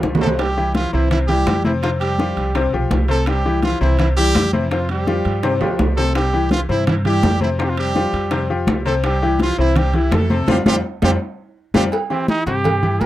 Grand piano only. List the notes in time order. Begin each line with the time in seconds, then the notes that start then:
Already playing: F3 F4 G4
0.21 C3 C4 C5
0.57 E3 E4 G4
0.93 C3 C4 C5
1.29 E3 E4 G4
1.65 C3 C4 C5
1.83 C3 C4 C5
2.19 F3 F4 G4
2.55 C3 C4 C5
2.73 F3 F4 G4
3.09 C3 C4 C5
3.45 E3 E4 G4
3.81 C3 C4 C5
4.17 E3 E4 G4
4.53 C3 C4 C5
4.71 C3 C4 C5
5.07 F3 F4 G4
5.43 C3 C4 C5
5.61 F3 F4 G4
5.97 C3 C4 C5
6.33 E3 E4 G4
6.69 C3 C4 C5
7.05 E3 E4 G4
7.41 C3 C4 C5
7.59 C3 C4 C5
7.95 F3 F4 G4
8.32 C3 C4 C5
8.50 F3 F4 G4
8.86 C3 C4 C5
9.22 E3 E4 G4
9.58 C3 C4 C5
9.94 E3 E4 G4
10.30 C3 C4 C5
10.48 G3 C4 F4
10.66 G3 C4 F4
11.02 G3 C4 F4
11.74 G3 C4 F4
12.10 E3 E4 G4
12.47 C3 C4 C5
12.82 E3 E4 G4